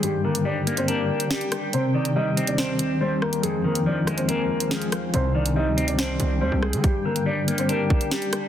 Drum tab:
HH |x--x--xxx--x-xx-|x--x--xx--x----x|x--x--xxx--x-xx-|x--x--xx--x----x|
SD |------------o-r-|--------o-----r-|------r-----o-r-|--------o-----r-|
BD |----------------|----------------|----------------|----------------|

HH |x--x--xxx--x-xx-|
SD |------------o-r-|
BD |o---------o-----|